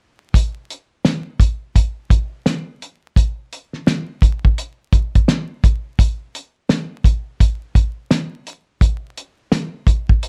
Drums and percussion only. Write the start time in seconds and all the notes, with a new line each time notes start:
0.34 kick, closed hi-hat
0.70 closed hi-hat
1.05 snare, closed hi-hat
1.40 kick, closed hi-hat
1.76 kick, closed hi-hat
2.10 kick, closed hi-hat
2.46 snare, closed hi-hat
2.82 closed hi-hat
3.16 kick, closed hi-hat
3.53 closed hi-hat
3.73 snare
3.87 snare, closed hi-hat
4.22 kick, closed hi-hat
4.45 kick
4.58 closed hi-hat
4.93 kick, closed hi-hat
5.15 kick, closed hi-hat
5.28 snare, closed hi-hat
5.64 kick, closed hi-hat
5.99 kick, closed hi-hat
6.35 closed hi-hat
6.69 snare, closed hi-hat
7.04 kick, closed hi-hat
7.40 kick, closed hi-hat
7.75 kick, closed hi-hat
8.11 snare, closed hi-hat
8.47 closed hi-hat
8.81 kick, closed hi-hat
9.17 closed hi-hat
9.52 snare, closed hi-hat
9.87 kick, closed hi-hat
10.09 kick
10.23 closed hi-hat